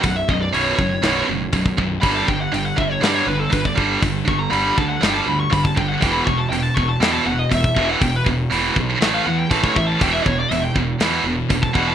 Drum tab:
HH |o---o---o---o---|o---o---o---o---|o---o---o---o---|o---o---o---o---|
SD |--------o-------|--------o-------|--------o-------|--------o-------|
BD |o-o---o-----ooo-|o-o---o-----ooo-|o-o---o-----ooo-|o-o---o-----ooo-|

HH |o---o---o---o---|o---o---o---o---|
SD |--------o-------|--------o-------|
BD |o-o---o-----ooo-|o-o---o-----ooo-|